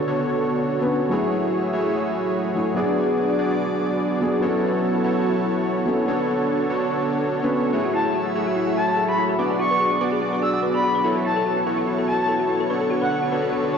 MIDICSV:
0, 0, Header, 1, 6, 480
1, 0, Start_track
1, 0, Key_signature, 3, "minor"
1, 0, Tempo, 413793
1, 1290, Time_signature, 4, 2, 24, 8
1, 15982, End_track
2, 0, Start_track
2, 0, Title_t, "Soft synth lead"
2, 0, Program_c, 0, 80
2, 9209, Note_on_c, 0, 81, 89
2, 9580, Note_off_c, 0, 81, 0
2, 10168, Note_on_c, 0, 81, 87
2, 10274, Note_off_c, 0, 81, 0
2, 10299, Note_on_c, 0, 81, 89
2, 10477, Note_off_c, 0, 81, 0
2, 10539, Note_on_c, 0, 83, 84
2, 10716, Note_off_c, 0, 83, 0
2, 11130, Note_on_c, 0, 85, 93
2, 11610, Note_off_c, 0, 85, 0
2, 12090, Note_on_c, 0, 88, 82
2, 12174, Note_off_c, 0, 88, 0
2, 12218, Note_on_c, 0, 88, 72
2, 12290, Note_off_c, 0, 88, 0
2, 12458, Note_on_c, 0, 83, 88
2, 12861, Note_off_c, 0, 83, 0
2, 13049, Note_on_c, 0, 81, 94
2, 13421, Note_off_c, 0, 81, 0
2, 14009, Note_on_c, 0, 81, 83
2, 14114, Note_off_c, 0, 81, 0
2, 14139, Note_on_c, 0, 81, 89
2, 14316, Note_off_c, 0, 81, 0
2, 15102, Note_on_c, 0, 78, 90
2, 15278, Note_off_c, 0, 78, 0
2, 15927, Note_on_c, 0, 81, 85
2, 15982, Note_off_c, 0, 81, 0
2, 15982, End_track
3, 0, Start_track
3, 0, Title_t, "Synth arpeggio sound"
3, 0, Program_c, 1, 84
3, 8970, Note_on_c, 1, 68, 77
3, 9027, Note_off_c, 1, 68, 0
3, 9098, Note_on_c, 1, 66, 74
3, 9147, Note_off_c, 1, 66, 0
3, 9207, Note_on_c, 1, 64, 96
3, 9294, Note_off_c, 1, 64, 0
3, 9339, Note_on_c, 1, 68, 97
3, 9387, Note_off_c, 1, 68, 0
3, 9449, Note_on_c, 1, 66, 76
3, 9506, Note_off_c, 1, 66, 0
3, 9579, Note_on_c, 1, 64, 73
3, 9651, Note_off_c, 1, 64, 0
3, 9689, Note_on_c, 1, 68, 74
3, 9724, Note_off_c, 1, 68, 0
3, 9820, Note_on_c, 1, 66, 74
3, 9868, Note_off_c, 1, 66, 0
3, 9928, Note_on_c, 1, 64, 79
3, 9986, Note_off_c, 1, 64, 0
3, 10060, Note_on_c, 1, 68, 73
3, 10108, Note_off_c, 1, 68, 0
3, 10169, Note_on_c, 1, 66, 72
3, 10255, Note_off_c, 1, 66, 0
3, 10300, Note_on_c, 1, 73, 74
3, 10348, Note_off_c, 1, 73, 0
3, 10409, Note_on_c, 1, 68, 81
3, 10466, Note_off_c, 1, 68, 0
3, 10538, Note_on_c, 1, 66, 74
3, 10611, Note_off_c, 1, 66, 0
3, 10650, Note_on_c, 1, 64, 71
3, 10684, Note_off_c, 1, 64, 0
3, 10781, Note_on_c, 1, 68, 101
3, 10828, Note_off_c, 1, 68, 0
3, 10890, Note_on_c, 1, 71, 80
3, 10947, Note_off_c, 1, 71, 0
3, 11019, Note_on_c, 1, 68, 74
3, 11067, Note_off_c, 1, 68, 0
3, 11129, Note_on_c, 1, 66, 94
3, 11215, Note_off_c, 1, 66, 0
3, 11262, Note_on_c, 1, 71, 97
3, 11308, Note_off_c, 1, 71, 0
3, 11370, Note_on_c, 1, 68, 77
3, 11427, Note_off_c, 1, 68, 0
3, 11501, Note_on_c, 1, 66, 72
3, 11572, Note_off_c, 1, 66, 0
3, 11610, Note_on_c, 1, 71, 73
3, 11644, Note_off_c, 1, 71, 0
3, 11740, Note_on_c, 1, 68, 74
3, 11788, Note_off_c, 1, 68, 0
3, 11849, Note_on_c, 1, 66, 81
3, 11906, Note_off_c, 1, 66, 0
3, 11979, Note_on_c, 1, 71, 71
3, 12027, Note_off_c, 1, 71, 0
3, 12090, Note_on_c, 1, 68, 75
3, 12175, Note_off_c, 1, 68, 0
3, 12219, Note_on_c, 1, 78, 72
3, 12267, Note_off_c, 1, 78, 0
3, 12329, Note_on_c, 1, 71, 80
3, 12386, Note_off_c, 1, 71, 0
3, 12459, Note_on_c, 1, 68, 73
3, 12531, Note_off_c, 1, 68, 0
3, 12568, Note_on_c, 1, 66, 72
3, 12603, Note_off_c, 1, 66, 0
3, 12701, Note_on_c, 1, 71, 98
3, 12748, Note_off_c, 1, 71, 0
3, 12809, Note_on_c, 1, 69, 80
3, 12866, Note_off_c, 1, 69, 0
3, 12940, Note_on_c, 1, 66, 74
3, 12988, Note_off_c, 1, 66, 0
3, 13049, Note_on_c, 1, 64, 94
3, 13134, Note_off_c, 1, 64, 0
3, 13182, Note_on_c, 1, 69, 95
3, 13229, Note_off_c, 1, 69, 0
3, 13292, Note_on_c, 1, 66, 76
3, 13347, Note_off_c, 1, 66, 0
3, 13422, Note_on_c, 1, 64, 75
3, 13492, Note_off_c, 1, 64, 0
3, 13532, Note_on_c, 1, 69, 74
3, 13565, Note_off_c, 1, 69, 0
3, 13662, Note_on_c, 1, 66, 71
3, 13709, Note_off_c, 1, 66, 0
3, 13772, Note_on_c, 1, 64, 79
3, 13827, Note_off_c, 1, 64, 0
3, 13902, Note_on_c, 1, 69, 75
3, 13949, Note_off_c, 1, 69, 0
3, 14011, Note_on_c, 1, 66, 75
3, 14095, Note_off_c, 1, 66, 0
3, 14141, Note_on_c, 1, 73, 72
3, 14188, Note_off_c, 1, 73, 0
3, 14251, Note_on_c, 1, 69, 80
3, 14307, Note_off_c, 1, 69, 0
3, 14381, Note_on_c, 1, 66, 74
3, 14452, Note_off_c, 1, 66, 0
3, 14489, Note_on_c, 1, 64, 73
3, 14524, Note_off_c, 1, 64, 0
3, 14620, Note_on_c, 1, 69, 97
3, 14668, Note_off_c, 1, 69, 0
3, 14730, Note_on_c, 1, 71, 79
3, 14787, Note_off_c, 1, 71, 0
3, 14860, Note_on_c, 1, 69, 73
3, 14908, Note_off_c, 1, 69, 0
3, 14967, Note_on_c, 1, 66, 97
3, 15054, Note_off_c, 1, 66, 0
3, 15098, Note_on_c, 1, 71, 99
3, 15147, Note_off_c, 1, 71, 0
3, 15209, Note_on_c, 1, 69, 77
3, 15266, Note_off_c, 1, 69, 0
3, 15338, Note_on_c, 1, 66, 73
3, 15410, Note_off_c, 1, 66, 0
3, 15449, Note_on_c, 1, 71, 74
3, 15484, Note_off_c, 1, 71, 0
3, 15580, Note_on_c, 1, 69, 73
3, 15628, Note_off_c, 1, 69, 0
3, 15690, Note_on_c, 1, 66, 77
3, 15747, Note_off_c, 1, 66, 0
3, 15820, Note_on_c, 1, 71, 72
3, 15868, Note_off_c, 1, 71, 0
3, 15930, Note_on_c, 1, 73, 73
3, 15982, Note_off_c, 1, 73, 0
3, 15982, End_track
4, 0, Start_track
4, 0, Title_t, "Analog polysynth"
4, 0, Program_c, 2, 90
4, 88, Note_on_c, 2, 59, 76
4, 88, Note_on_c, 2, 69, 72
4, 89, Note_on_c, 2, 62, 69
4, 89, Note_on_c, 2, 66, 75
4, 89, Note_on_c, 2, 73, 84
4, 1263, Note_off_c, 2, 59, 0
4, 1263, Note_off_c, 2, 62, 0
4, 1263, Note_off_c, 2, 66, 0
4, 1263, Note_off_c, 2, 69, 0
4, 1263, Note_off_c, 2, 73, 0
4, 1289, Note_on_c, 2, 66, 72
4, 1290, Note_on_c, 2, 57, 77
4, 1290, Note_on_c, 2, 64, 69
4, 1290, Note_on_c, 2, 68, 71
4, 1290, Note_on_c, 2, 73, 86
4, 1983, Note_off_c, 2, 66, 0
4, 1984, Note_off_c, 2, 57, 0
4, 1984, Note_off_c, 2, 64, 0
4, 1984, Note_off_c, 2, 68, 0
4, 1984, Note_off_c, 2, 73, 0
4, 2010, Note_on_c, 2, 66, 72
4, 2011, Note_on_c, 2, 57, 80
4, 2011, Note_on_c, 2, 64, 71
4, 2011, Note_on_c, 2, 68, 71
4, 2011, Note_on_c, 2, 73, 89
4, 3184, Note_off_c, 2, 57, 0
4, 3184, Note_off_c, 2, 64, 0
4, 3184, Note_off_c, 2, 66, 0
4, 3184, Note_off_c, 2, 68, 0
4, 3184, Note_off_c, 2, 73, 0
4, 3209, Note_on_c, 2, 59, 76
4, 3209, Note_on_c, 2, 66, 71
4, 3209, Note_on_c, 2, 68, 73
4, 3210, Note_on_c, 2, 74, 83
4, 3211, Note_on_c, 2, 62, 69
4, 3903, Note_off_c, 2, 59, 0
4, 3903, Note_off_c, 2, 66, 0
4, 3904, Note_off_c, 2, 62, 0
4, 3904, Note_off_c, 2, 68, 0
4, 3904, Note_off_c, 2, 74, 0
4, 3930, Note_on_c, 2, 68, 71
4, 3931, Note_on_c, 2, 59, 82
4, 3931, Note_on_c, 2, 62, 73
4, 3931, Note_on_c, 2, 66, 72
4, 3931, Note_on_c, 2, 74, 84
4, 5104, Note_off_c, 2, 59, 0
4, 5104, Note_off_c, 2, 62, 0
4, 5104, Note_off_c, 2, 66, 0
4, 5104, Note_off_c, 2, 68, 0
4, 5104, Note_off_c, 2, 74, 0
4, 5130, Note_on_c, 2, 69, 72
4, 5131, Note_on_c, 2, 59, 77
4, 5131, Note_on_c, 2, 64, 70
4, 5131, Note_on_c, 2, 66, 69
4, 5131, Note_on_c, 2, 73, 85
4, 5824, Note_off_c, 2, 59, 0
4, 5824, Note_off_c, 2, 64, 0
4, 5824, Note_off_c, 2, 66, 0
4, 5824, Note_off_c, 2, 69, 0
4, 5824, Note_off_c, 2, 73, 0
4, 5850, Note_on_c, 2, 66, 72
4, 5851, Note_on_c, 2, 69, 71
4, 5851, Note_on_c, 2, 73, 85
4, 5852, Note_on_c, 2, 59, 78
4, 5852, Note_on_c, 2, 64, 72
4, 7024, Note_off_c, 2, 66, 0
4, 7024, Note_off_c, 2, 73, 0
4, 7025, Note_off_c, 2, 59, 0
4, 7025, Note_off_c, 2, 64, 0
4, 7025, Note_off_c, 2, 69, 0
4, 7051, Note_on_c, 2, 69, 73
4, 7051, Note_on_c, 2, 73, 86
4, 7052, Note_on_c, 2, 59, 78
4, 7052, Note_on_c, 2, 62, 70
4, 7052, Note_on_c, 2, 66, 70
4, 7745, Note_off_c, 2, 59, 0
4, 7745, Note_off_c, 2, 62, 0
4, 7745, Note_off_c, 2, 66, 0
4, 7745, Note_off_c, 2, 69, 0
4, 7745, Note_off_c, 2, 73, 0
4, 7770, Note_on_c, 2, 59, 79
4, 7770, Note_on_c, 2, 66, 74
4, 7770, Note_on_c, 2, 69, 71
4, 7770, Note_on_c, 2, 73, 88
4, 7771, Note_on_c, 2, 62, 74
4, 8944, Note_off_c, 2, 59, 0
4, 8944, Note_off_c, 2, 62, 0
4, 8944, Note_off_c, 2, 66, 0
4, 8944, Note_off_c, 2, 69, 0
4, 8944, Note_off_c, 2, 73, 0
4, 8968, Note_on_c, 2, 57, 74
4, 8968, Note_on_c, 2, 64, 70
4, 8968, Note_on_c, 2, 66, 69
4, 8968, Note_on_c, 2, 68, 72
4, 8968, Note_on_c, 2, 73, 82
4, 9663, Note_off_c, 2, 57, 0
4, 9663, Note_off_c, 2, 64, 0
4, 9663, Note_off_c, 2, 66, 0
4, 9663, Note_off_c, 2, 68, 0
4, 9663, Note_off_c, 2, 73, 0
4, 9690, Note_on_c, 2, 57, 79
4, 9690, Note_on_c, 2, 64, 74
4, 9690, Note_on_c, 2, 66, 73
4, 9691, Note_on_c, 2, 68, 69
4, 9691, Note_on_c, 2, 73, 87
4, 10864, Note_off_c, 2, 57, 0
4, 10864, Note_off_c, 2, 64, 0
4, 10864, Note_off_c, 2, 66, 0
4, 10864, Note_off_c, 2, 68, 0
4, 10864, Note_off_c, 2, 73, 0
4, 10888, Note_on_c, 2, 59, 75
4, 10888, Note_on_c, 2, 62, 72
4, 10888, Note_on_c, 2, 66, 71
4, 10888, Note_on_c, 2, 68, 71
4, 10888, Note_on_c, 2, 74, 85
4, 11583, Note_off_c, 2, 59, 0
4, 11583, Note_off_c, 2, 62, 0
4, 11583, Note_off_c, 2, 66, 0
4, 11583, Note_off_c, 2, 68, 0
4, 11583, Note_off_c, 2, 74, 0
4, 11608, Note_on_c, 2, 66, 74
4, 11609, Note_on_c, 2, 62, 71
4, 11609, Note_on_c, 2, 68, 73
4, 11609, Note_on_c, 2, 74, 87
4, 11610, Note_on_c, 2, 59, 81
4, 12783, Note_off_c, 2, 62, 0
4, 12783, Note_off_c, 2, 66, 0
4, 12783, Note_off_c, 2, 68, 0
4, 12783, Note_off_c, 2, 74, 0
4, 12784, Note_off_c, 2, 59, 0
4, 12808, Note_on_c, 2, 64, 73
4, 12808, Note_on_c, 2, 66, 72
4, 12808, Note_on_c, 2, 73, 85
4, 12809, Note_on_c, 2, 59, 76
4, 12809, Note_on_c, 2, 69, 73
4, 13503, Note_off_c, 2, 59, 0
4, 13503, Note_off_c, 2, 64, 0
4, 13503, Note_off_c, 2, 66, 0
4, 13503, Note_off_c, 2, 69, 0
4, 13503, Note_off_c, 2, 73, 0
4, 13531, Note_on_c, 2, 66, 73
4, 13532, Note_on_c, 2, 59, 78
4, 13532, Note_on_c, 2, 64, 73
4, 13532, Note_on_c, 2, 69, 72
4, 13532, Note_on_c, 2, 73, 86
4, 14705, Note_off_c, 2, 59, 0
4, 14705, Note_off_c, 2, 64, 0
4, 14705, Note_off_c, 2, 66, 0
4, 14705, Note_off_c, 2, 69, 0
4, 14705, Note_off_c, 2, 73, 0
4, 14731, Note_on_c, 2, 59, 78
4, 14731, Note_on_c, 2, 62, 72
4, 14731, Note_on_c, 2, 69, 71
4, 14732, Note_on_c, 2, 66, 70
4, 14732, Note_on_c, 2, 73, 87
4, 15424, Note_off_c, 2, 69, 0
4, 15425, Note_off_c, 2, 59, 0
4, 15425, Note_off_c, 2, 62, 0
4, 15425, Note_off_c, 2, 66, 0
4, 15425, Note_off_c, 2, 73, 0
4, 15450, Note_on_c, 2, 62, 73
4, 15450, Note_on_c, 2, 66, 72
4, 15450, Note_on_c, 2, 69, 74
4, 15450, Note_on_c, 2, 73, 87
4, 15451, Note_on_c, 2, 59, 78
4, 15982, Note_off_c, 2, 59, 0
4, 15982, Note_off_c, 2, 62, 0
4, 15982, Note_off_c, 2, 66, 0
4, 15982, Note_off_c, 2, 69, 0
4, 15982, Note_off_c, 2, 73, 0
4, 15982, End_track
5, 0, Start_track
5, 0, Title_t, "Analog synth pad"
5, 0, Program_c, 3, 89
5, 0, Note_on_c, 3, 50, 78
5, 0, Note_on_c, 3, 59, 72
5, 0, Note_on_c, 3, 69, 85
5, 0, Note_on_c, 3, 73, 84
5, 1243, Note_off_c, 3, 59, 0
5, 1251, Note_off_c, 3, 69, 0
5, 1269, Note_off_c, 3, 73, 0
5, 1270, Note_off_c, 3, 50, 0
5, 1290, Note_on_c, 3, 54, 76
5, 1290, Note_on_c, 3, 57, 72
5, 1291, Note_on_c, 3, 68, 69
5, 1291, Note_on_c, 3, 76, 88
5, 3191, Note_off_c, 3, 57, 0
5, 3191, Note_off_c, 3, 76, 0
5, 3212, Note_on_c, 3, 59, 73
5, 3214, Note_on_c, 3, 74, 86
5, 5092, Note_off_c, 3, 54, 0
5, 5092, Note_off_c, 3, 68, 0
5, 5113, Note_off_c, 3, 74, 0
5, 5131, Note_on_c, 3, 54, 80
5, 5131, Note_on_c, 3, 69, 71
5, 5132, Note_on_c, 3, 73, 87
5, 7031, Note_off_c, 3, 54, 0
5, 7031, Note_off_c, 3, 69, 0
5, 7048, Note_on_c, 3, 69, 70
5, 7049, Note_on_c, 3, 50, 78
5, 8925, Note_off_c, 3, 59, 0
5, 8933, Note_off_c, 3, 73, 0
5, 8950, Note_off_c, 3, 50, 0
5, 8950, Note_off_c, 3, 69, 0
5, 8971, Note_on_c, 3, 57, 72
5, 8971, Note_on_c, 3, 76, 88
5, 8972, Note_on_c, 3, 54, 78
5, 8972, Note_on_c, 3, 66, 72
5, 10871, Note_off_c, 3, 76, 0
5, 10872, Note_off_c, 3, 57, 0
5, 10889, Note_on_c, 3, 74, 84
5, 10891, Note_on_c, 3, 59, 74
5, 12773, Note_off_c, 3, 66, 0
5, 12790, Note_off_c, 3, 74, 0
5, 12807, Note_on_c, 3, 69, 71
5, 12807, Note_on_c, 3, 73, 90
5, 14685, Note_off_c, 3, 54, 0
5, 14692, Note_off_c, 3, 59, 0
5, 14733, Note_on_c, 3, 50, 75
5, 14733, Note_on_c, 3, 59, 69
5, 15982, Note_off_c, 3, 50, 0
5, 15982, Note_off_c, 3, 59, 0
5, 15982, Note_off_c, 3, 69, 0
5, 15982, Note_off_c, 3, 73, 0
5, 15982, End_track
6, 0, Start_track
6, 0, Title_t, "Felt piano"
6, 0, Program_c, 4, 0
6, 0, Control_c, 4, 64, 127
6, 0, Note_on_c, 4, 50, 83
6, 0, Note_on_c, 4, 59, 73
6, 0, Note_on_c, 4, 69, 92
6, 0, Note_on_c, 4, 73, 75
6, 903, Note_off_c, 4, 50, 0
6, 911, Note_off_c, 4, 59, 0
6, 918, Note_off_c, 4, 73, 0
6, 926, Note_off_c, 4, 69, 0
6, 929, Note_on_c, 4, 50, 75
6, 937, Note_on_c, 4, 59, 69
6, 944, Note_on_c, 4, 61, 67
6, 952, Note_on_c, 4, 71, 88
6, 1048, Note_off_c, 4, 50, 0
6, 1051, Note_off_c, 4, 59, 0
6, 1055, Note_off_c, 4, 61, 0
6, 1059, Note_off_c, 4, 71, 0
6, 1266, Note_on_c, 4, 54, 82
6, 1281, Note_on_c, 4, 57, 74
6, 1297, Note_on_c, 4, 64, 78
6, 1303, Control_c, 4, 64, 0
6, 1313, Note_on_c, 4, 68, 91
6, 1486, Control_c, 4, 64, 127
6, 2932, Note_off_c, 4, 54, 0
6, 2940, Note_off_c, 4, 57, 0
6, 2947, Note_off_c, 4, 64, 0
6, 2955, Note_off_c, 4, 68, 0
6, 2958, Note_on_c, 4, 54, 69
6, 2965, Note_on_c, 4, 57, 61
6, 2973, Note_on_c, 4, 64, 64
6, 2981, Note_on_c, 4, 68, 75
6, 3167, Note_off_c, 4, 54, 0
6, 3181, Note_off_c, 4, 57, 0
6, 3185, Note_off_c, 4, 64, 0
6, 3185, Note_on_c, 4, 54, 85
6, 3189, Note_off_c, 4, 68, 0
6, 3201, Note_on_c, 4, 59, 76
6, 3215, Note_on_c, 4, 62, 75
6, 3227, Control_c, 4, 64, 0
6, 3231, Note_on_c, 4, 68, 91
6, 3434, Control_c, 4, 64, 127
6, 4851, Note_off_c, 4, 54, 0
6, 4859, Note_off_c, 4, 59, 0
6, 4867, Note_off_c, 4, 62, 0
6, 4875, Note_off_c, 4, 68, 0
6, 4878, Note_on_c, 4, 54, 68
6, 4884, Note_on_c, 4, 59, 63
6, 4893, Note_on_c, 4, 62, 61
6, 4901, Note_on_c, 4, 68, 76
6, 5086, Note_off_c, 4, 54, 0
6, 5101, Note_off_c, 4, 59, 0
6, 5103, Note_on_c, 4, 54, 81
6, 5105, Note_off_c, 4, 62, 0
6, 5109, Note_off_c, 4, 68, 0
6, 5119, Note_on_c, 4, 59, 77
6, 5135, Note_on_c, 4, 61, 80
6, 5144, Control_c, 4, 64, 0
6, 5150, Note_on_c, 4, 69, 92
6, 5372, Control_c, 4, 64, 127
6, 6771, Note_off_c, 4, 54, 0
6, 6779, Note_off_c, 4, 59, 0
6, 6786, Note_off_c, 4, 61, 0
6, 6794, Note_off_c, 4, 69, 0
6, 6795, Note_on_c, 4, 54, 68
6, 6803, Note_on_c, 4, 59, 63
6, 6811, Note_on_c, 4, 61, 62
6, 6819, Note_on_c, 4, 69, 75
6, 7017, Note_off_c, 4, 54, 0
6, 7020, Note_off_c, 4, 59, 0
6, 7024, Note_off_c, 4, 61, 0
6, 7025, Note_on_c, 4, 50, 84
6, 7028, Note_off_c, 4, 69, 0
6, 7040, Note_on_c, 4, 59, 75
6, 7056, Note_on_c, 4, 73, 76
6, 7067, Control_c, 4, 64, 0
6, 7071, Note_on_c, 4, 69, 89
6, 7252, Control_c, 4, 64, 127
6, 8582, Note_off_c, 4, 50, 0
6, 8590, Note_off_c, 4, 59, 0
6, 8598, Note_off_c, 4, 73, 0
6, 8605, Note_off_c, 4, 69, 0
6, 8607, Note_on_c, 4, 50, 75
6, 8615, Note_on_c, 4, 59, 71
6, 8624, Note_on_c, 4, 61, 68
6, 8630, Note_on_c, 4, 71, 85
6, 8727, Note_off_c, 4, 50, 0
6, 8730, Note_off_c, 4, 59, 0
6, 8735, Note_off_c, 4, 61, 0
6, 8738, Note_off_c, 4, 71, 0
6, 8987, Control_c, 4, 64, 0
6, 15982, End_track
0, 0, End_of_file